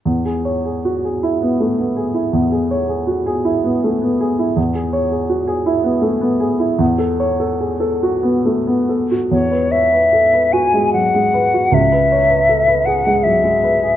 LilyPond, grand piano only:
\new Staff \with { instrumentName = "Grand piano" } { \time 6/8 \key b \mixolydian \tempo 4. = 52 e,16 gis'16 cis''16 gis'16 fis'16 gis'16 e'16 b16 a16 b16 gis'16 e'16 | e,16 gis'16 cis''16 gis'16 fis'16 gis'16 e'16 b16 a16 b16 gis'16 e'16 | e,16 gis'16 cis''16 gis'16 fis'16 gis'16 e'16 b16 a16 b16 gis'16 e'16 | e,16 a'16 cis''16 a'16 gis'16 a'16 fis'16 b16 a16 b16 a'16 fis'16 |
e,16 b'16 cis''16 b'16 a'16 b'16 fis'16 gis16 fis16 gis16 b'16 fis'16 | cis,16 b'16 cis''16 b'16 a'16 b'16 gis'16 gis16 fis16 gis16 b'16 gis'16 | }